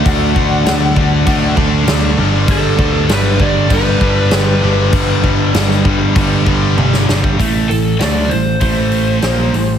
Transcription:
<<
  \new Staff \with { instrumentName = "Lead electric guitar" } { \time 4/4 \key g \major \tempo 4 = 98 fis''2. r4 | a'4 b'8 d''8 b'2~ | b'2. r4 | r8 a'8 d''8 c''8 c''2 | }
  \new Staff \with { instrumentName = "Distorted electric guitar" } { \clef bass \time 4/4 \key g \major <d a d'>8 <d a d'>8 <d a d'>8 <d a d'>8 <d a d'>8 <d a d'>8 <d a d'>8 <g, d g>8 | <g, d g>8 <g, d g>8 <g, d g>8 <g, d g>8 <g, d g>8 <g, d g>8 <g, d g>8 <g, d g>8 | <g, d g>8 <g, d g>8 <g, d g>8 <g, d g>8 <g, d g>8 <g, d g>8 <g, d g>8 <g, d g>8 | <a, e a>8 <a, e>8 <d a d'>8 <a, e>8 <a, e a>4 <bes, f bes>8 <a, e>8 | }
  \new Staff \with { instrumentName = "Distorted electric guitar" } { \clef bass \time 4/4 \key g \major <d a d'>8 <d a d'>8 <d a d'>8 <d a d'>8 <d a d'>8 <d a d'>8 <d a d'>8 <g, d g>8 | <g, d g>8 <g, d g>8 <g, d g>8 <g, d g>8 <g, d g>8 <g, d g>8 <g, d g>8 <g, d g>8 | <g, d g>8 <g, d g>8 <g, d g>8 <g, d g>8 <g, d g>8 <g, d g>8 <g, d g>8 <g, d g>8 | <a, e a>8 <a, e>8 <d a d'>8 <a, e>8 <a, e a>4 <bes, f bes>8 <a, e>8 | }
  \new Staff \with { instrumentName = "Overdriven electric guitar" } { \clef bass \time 4/4 \key g \major <d a d'>2 <d a d'>8 <d a d'>4 <g, d g>8~ | <g, d g>2 <g, d g>8 <g, d g>4 <g, d g>8~ | <g, d g>2 <g, d g>8 <g, d g>4 r8 | r1 | }
  \new Staff \with { instrumentName = "Picked electric bass" } { \clef bass \time 4/4 \key g \major d,8 d,8 d,8 d,8 d,8 d,8 d,8 g,,8 | g,,8 d,8 g,,8 g,,8 g,,8 g,,8 g,,8 g,,8 | g,,8 g,,8 g,,8 g,,8 g,,8 g,,8 g,,8 g,,8 | a,,8 a,,8 d,8 a,,8 a,,4 bes,,8 a,,8 | }
  \new DrumStaff \with { instrumentName = "Drums" } \drummode { \time 4/4 <cymc bd>8 bd8 <cymc sn>8 bd8 <cymc bd>8 bd8 <cymc sn>4 | <cymc bd>8 bd8 <cymc sn>8 bd8 <cymc bd>8 bd8 <cymc sn>4 | <cymc bd>8 bd8 <cymc sn>16 sn16 bd8 <cymc bd>8 bd8 tommh16 sn16 sn16 bd16 | <hho bd>8 hho8 <hho sn>8 hho8 <hho bd>8 hho8 <hho sn>8 hho8 | }
>>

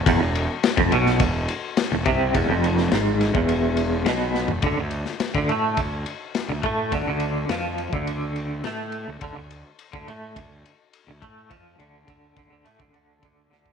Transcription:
<<
  \new Staff \with { instrumentName = "Clean electric guitar" } { \clef bass \time 4/4 \tempo 4 = 105 e,16 e,8 r8 f,16 b,8 e,8 r8. e,16 c8 | e,16 f,8. gis,8. e,4~ e,16 b,8. e,16 | d16 d8 r8 d16 a8 d8 r8. d16 a8 | d16 d8. f8. d4~ d16 a8. d16 |
d16 d8 r8 d16 a8 d8 r8. d16 a8 | f8 d8 d8 d16 d16 a16 d16 d8 d8 d8 | }
  \new Staff \with { instrumentName = "Fingered electric bass" } { \clef bass \time 4/4 e,,16 e,,8 r8 f,,16 b,,8 e,,8 r8. e,,16 c,8 | e,,16 f,,8. gis,,8. e,,4~ e,,16 b,,8. e,,16 | d,16 d,8 r8 d,16 a,8 d,8 r8. d,16 a,8 | d,16 d,8. f,8. d,4~ d,16 a,8. d,16 |
d,16 d,8 r8 d,16 a,8 d,8 r8. d,16 a,8 | f,8 d,8 d,8 d,16 d,16 a,16 d,16 d,8 d,8 d,8 | }
  \new DrumStaff \with { instrumentName = "Drums" } \drummode { \time 4/4 <bd cymr>8 cymr8 <cymr sn>16 bd16 cymr16 sn16 <bd cymr>8 cymr8 <cymr sn>8 <bd cymr>8 | <bd cymr>8 cymr16 sn16 <cymr sn>8 <cymr sn>16 bd16 cymr8 cymr8 <cymr sn>8 sn16 tomfh16 | <bd cymr>8 cymr16 sn16 <cymr sn>16 bd16 cymr8 <bd cymr>8 cymr8 <cymr sn>8 <bd cymr>8 | <bd cymr>8 cymr8 <cymr sn>8 cymr16 bd16 cymr8 cymr8 <cymr sn>8 cymr8 |
<bd cymr>8 cymr8 cymr16 bd16 cymr8 <bd cymr>8 cymr8 cymr8 <bd cymr>8 | <bd cymr>8 cymr8 <bd cymr>8 <bd cymr>8 cymr16 bd16 cymr8 <bd cymr>8 sn16 bd16 | }
>>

